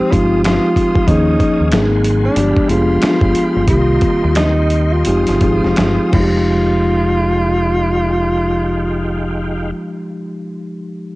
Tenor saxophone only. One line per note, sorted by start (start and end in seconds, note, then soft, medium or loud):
0.00 0.13 C4 loud
0.12 0.44 F4 medium
0.44 1.09 F4 loud
1.08 1.95 D#4 medium
2.25 2.70 D4 medium
2.69 3.68 F4 loud
3.69 4.32 F4 loud
4.36 4.94 D#4 medium
4.93 6.14 F4 medium
6.14 9.72 F4 loud